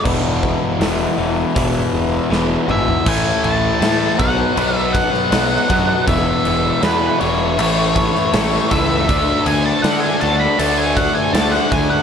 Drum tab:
CC |x---------------|x-x-x-x-x-x-x-x-|x-x-x-x-x-x-x-x-|x-x-x-x-x-x-x-x-|
HH |----o---o-------|----------------|----------------|----------------|
SD |----o-------o---|----o------oo---|----o------oo---|----o-------oo--|
T2 |--------------o-|----------------|----------------|----------------|
FT |---------------o|----------------|----------------|----------------|
BD |o-o-----o-------|o-----o---o---o-|o---------o---o-|o---------o---o-|